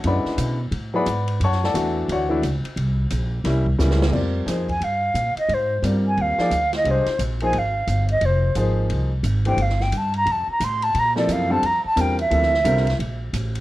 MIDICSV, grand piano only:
0, 0, Header, 1, 2, 480
1, 0, Start_track
1, 0, Tempo, 340909
1, 56, Time_signature, 4, 2, 24, 8
1, 19154, End_track
2, 0, Start_track
2, 0, Title_t, "Grand piano"
2, 0, Program_c, 0, 0
2, 54, Note_on_c, 0, 50, 64
2, 64, Note_on_c, 0, 49, 59
2, 65, Note_on_c, 0, 56, 58
2, 75, Note_on_c, 0, 64, 71
2, 102, Note_on_c, 0, 83, 93
2, 105, Note_on_c, 0, 71, 66
2, 107, Note_on_c, 0, 78, 74
2, 108, Note_on_c, 0, 74, 67
2, 777, Note_off_c, 0, 50, 0
2, 782, Note_off_c, 0, 49, 0
2, 783, Note_off_c, 0, 56, 0
2, 788, Note_off_c, 0, 64, 0
2, 808, Note_off_c, 0, 83, 0
2, 810, Note_off_c, 0, 71, 0
2, 811, Note_off_c, 0, 74, 0
2, 811, Note_off_c, 0, 78, 0
2, 1318, Note_on_c, 0, 54, 69
2, 1324, Note_on_c, 0, 59, 64
2, 1331, Note_on_c, 0, 64, 71
2, 1337, Note_on_c, 0, 68, 81
2, 1348, Note_on_c, 0, 78, 82
2, 1349, Note_on_c, 0, 83, 101
2, 1353, Note_on_c, 0, 74, 79
2, 1357, Note_on_c, 0, 71, 77
2, 1479, Note_off_c, 0, 54, 0
2, 1481, Note_off_c, 0, 59, 0
2, 1485, Note_off_c, 0, 64, 0
2, 1488, Note_off_c, 0, 68, 0
2, 1946, Note_off_c, 0, 78, 0
2, 1946, Note_off_c, 0, 83, 0
2, 1948, Note_off_c, 0, 74, 0
2, 1951, Note_off_c, 0, 71, 0
2, 2026, Note_on_c, 0, 85, 103
2, 2033, Note_on_c, 0, 81, 84
2, 2035, Note_on_c, 0, 73, 92
2, 2039, Note_on_c, 0, 78, 85
2, 2294, Note_off_c, 0, 85, 0
2, 2298, Note_off_c, 0, 81, 0
2, 2299, Note_off_c, 0, 73, 0
2, 2301, Note_off_c, 0, 78, 0
2, 2320, Note_on_c, 0, 81, 103
2, 2325, Note_on_c, 0, 78, 76
2, 2326, Note_on_c, 0, 69, 75
2, 2327, Note_on_c, 0, 74, 77
2, 2448, Note_on_c, 0, 52, 65
2, 2457, Note_on_c, 0, 57, 62
2, 2467, Note_on_c, 0, 62, 62
2, 2471, Note_on_c, 0, 66, 72
2, 2911, Note_off_c, 0, 81, 0
2, 2914, Note_off_c, 0, 78, 0
2, 2915, Note_off_c, 0, 69, 0
2, 2915, Note_off_c, 0, 74, 0
2, 2967, Note_off_c, 0, 66, 0
2, 2985, Note_on_c, 0, 73, 72
2, 2986, Note_on_c, 0, 74, 67
2, 2988, Note_on_c, 0, 66, 76
2, 2989, Note_on_c, 0, 78, 94
2, 3172, Note_off_c, 0, 52, 0
2, 3177, Note_off_c, 0, 57, 0
2, 3182, Note_off_c, 0, 62, 0
2, 3222, Note_on_c, 0, 52, 75
2, 3232, Note_on_c, 0, 57, 72
2, 3238, Note_on_c, 0, 62, 73
2, 3247, Note_on_c, 0, 64, 88
2, 3389, Note_off_c, 0, 52, 0
2, 3394, Note_off_c, 0, 57, 0
2, 3397, Note_off_c, 0, 62, 0
2, 3402, Note_off_c, 0, 64, 0
2, 3407, Note_off_c, 0, 73, 0
2, 3408, Note_off_c, 0, 74, 0
2, 3409, Note_off_c, 0, 66, 0
2, 3410, Note_off_c, 0, 78, 0
2, 4856, Note_on_c, 0, 55, 77
2, 4859, Note_on_c, 0, 58, 66
2, 4865, Note_on_c, 0, 61, 66
2, 4875, Note_on_c, 0, 64, 83
2, 5125, Note_off_c, 0, 55, 0
2, 5127, Note_off_c, 0, 58, 0
2, 5130, Note_off_c, 0, 61, 0
2, 5134, Note_off_c, 0, 64, 0
2, 5328, Note_on_c, 0, 55, 79
2, 5332, Note_on_c, 0, 58, 65
2, 5337, Note_on_c, 0, 61, 69
2, 5346, Note_on_c, 0, 64, 75
2, 5769, Note_off_c, 0, 55, 0
2, 5790, Note_on_c, 0, 55, 59
2, 5802, Note_on_c, 0, 60, 59
2, 5806, Note_on_c, 0, 65, 56
2, 5807, Note_on_c, 0, 70, 54
2, 5811, Note_off_c, 0, 58, 0
2, 5813, Note_off_c, 0, 61, 0
2, 5815, Note_on_c, 0, 74, 70
2, 5818, Note_off_c, 0, 64, 0
2, 6262, Note_off_c, 0, 55, 0
2, 6267, Note_off_c, 0, 60, 0
2, 6270, Note_off_c, 0, 65, 0
2, 6270, Note_off_c, 0, 70, 0
2, 6274, Note_off_c, 0, 74, 0
2, 6280, Note_on_c, 0, 53, 61
2, 6282, Note_on_c, 0, 63, 49
2, 6283, Note_on_c, 0, 58, 54
2, 6290, Note_on_c, 0, 68, 49
2, 6298, Note_on_c, 0, 72, 64
2, 6556, Note_off_c, 0, 53, 0
2, 6558, Note_off_c, 0, 58, 0
2, 6558, Note_off_c, 0, 63, 0
2, 6561, Note_off_c, 0, 68, 0
2, 6565, Note_off_c, 0, 72, 0
2, 8214, Note_on_c, 0, 55, 57
2, 8220, Note_on_c, 0, 60, 53
2, 8226, Note_on_c, 0, 65, 50
2, 8229, Note_on_c, 0, 70, 54
2, 8233, Note_on_c, 0, 74, 59
2, 8933, Note_off_c, 0, 55, 0
2, 8936, Note_off_c, 0, 60, 0
2, 8939, Note_off_c, 0, 65, 0
2, 8941, Note_off_c, 0, 70, 0
2, 8942, Note_off_c, 0, 74, 0
2, 8990, Note_on_c, 0, 53, 74
2, 9004, Note_on_c, 0, 58, 68
2, 9006, Note_on_c, 0, 63, 70
2, 9009, Note_on_c, 0, 68, 66
2, 9017, Note_on_c, 0, 74, 82
2, 9151, Note_off_c, 0, 53, 0
2, 9157, Note_off_c, 0, 58, 0
2, 9158, Note_off_c, 0, 63, 0
2, 9160, Note_off_c, 0, 68, 0
2, 9164, Note_off_c, 0, 74, 0
2, 9656, Note_on_c, 0, 56, 63
2, 9665, Note_on_c, 0, 62, 62
2, 9668, Note_on_c, 0, 67, 59
2, 9677, Note_on_c, 0, 72, 62
2, 9678, Note_on_c, 0, 75, 75
2, 9924, Note_off_c, 0, 56, 0
2, 9929, Note_off_c, 0, 62, 0
2, 9930, Note_off_c, 0, 67, 0
2, 9935, Note_off_c, 0, 72, 0
2, 9935, Note_off_c, 0, 75, 0
2, 10447, Note_on_c, 0, 53, 68
2, 10451, Note_on_c, 0, 58, 67
2, 10459, Note_on_c, 0, 63, 69
2, 10460, Note_on_c, 0, 68, 69
2, 10469, Note_on_c, 0, 72, 77
2, 10599, Note_off_c, 0, 53, 0
2, 10601, Note_off_c, 0, 58, 0
2, 10605, Note_off_c, 0, 63, 0
2, 10606, Note_off_c, 0, 68, 0
2, 10610, Note_off_c, 0, 72, 0
2, 12058, Note_on_c, 0, 53, 75
2, 12064, Note_on_c, 0, 58, 60
2, 12065, Note_on_c, 0, 63, 59
2, 12074, Note_on_c, 0, 68, 66
2, 12075, Note_on_c, 0, 72, 82
2, 12775, Note_off_c, 0, 53, 0
2, 12778, Note_off_c, 0, 58, 0
2, 12779, Note_off_c, 0, 63, 0
2, 12783, Note_off_c, 0, 68, 0
2, 12784, Note_off_c, 0, 72, 0
2, 13318, Note_on_c, 0, 52, 64
2, 13324, Note_on_c, 0, 57, 58
2, 13326, Note_on_c, 0, 62, 59
2, 13334, Note_on_c, 0, 67, 55
2, 13338, Note_on_c, 0, 72, 69
2, 13475, Note_off_c, 0, 52, 0
2, 13478, Note_off_c, 0, 57, 0
2, 13479, Note_off_c, 0, 62, 0
2, 13483, Note_off_c, 0, 67, 0
2, 13485, Note_off_c, 0, 72, 0
2, 15712, Note_on_c, 0, 48, 81
2, 15719, Note_on_c, 0, 53, 73
2, 15722, Note_on_c, 0, 64, 65
2, 15726, Note_on_c, 0, 58, 69
2, 15732, Note_on_c, 0, 69, 86
2, 16162, Note_off_c, 0, 48, 0
2, 16166, Note_off_c, 0, 53, 0
2, 16167, Note_off_c, 0, 64, 0
2, 16169, Note_off_c, 0, 58, 0
2, 16172, Note_off_c, 0, 69, 0
2, 16188, Note_on_c, 0, 50, 78
2, 16194, Note_on_c, 0, 60, 76
2, 16195, Note_on_c, 0, 55, 69
2, 16197, Note_on_c, 0, 65, 69
2, 16204, Note_on_c, 0, 69, 80
2, 16351, Note_off_c, 0, 50, 0
2, 16353, Note_off_c, 0, 60, 0
2, 16354, Note_off_c, 0, 55, 0
2, 16355, Note_off_c, 0, 65, 0
2, 16358, Note_off_c, 0, 69, 0
2, 16835, Note_on_c, 0, 50, 68
2, 16840, Note_on_c, 0, 55, 68
2, 16844, Note_on_c, 0, 60, 65
2, 16845, Note_on_c, 0, 65, 66
2, 16854, Note_on_c, 0, 70, 81
2, 17115, Note_off_c, 0, 50, 0
2, 17117, Note_off_c, 0, 55, 0
2, 17119, Note_off_c, 0, 60, 0
2, 17120, Note_off_c, 0, 65, 0
2, 17125, Note_off_c, 0, 70, 0
2, 17313, Note_on_c, 0, 48, 66
2, 17318, Note_on_c, 0, 53, 61
2, 17322, Note_on_c, 0, 58, 66
2, 17326, Note_on_c, 0, 64, 59
2, 17334, Note_on_c, 0, 69, 73
2, 17594, Note_off_c, 0, 48, 0
2, 17597, Note_off_c, 0, 53, 0
2, 17598, Note_off_c, 0, 58, 0
2, 17601, Note_off_c, 0, 64, 0
2, 17605, Note_off_c, 0, 69, 0
2, 17801, Note_on_c, 0, 50, 78
2, 17805, Note_on_c, 0, 55, 75
2, 17814, Note_on_c, 0, 65, 72
2, 17816, Note_on_c, 0, 60, 73
2, 17821, Note_on_c, 0, 70, 84
2, 18078, Note_off_c, 0, 50, 0
2, 18080, Note_off_c, 0, 55, 0
2, 18085, Note_off_c, 0, 65, 0
2, 18086, Note_off_c, 0, 60, 0
2, 18088, Note_off_c, 0, 70, 0
2, 19154, End_track
0, 0, End_of_file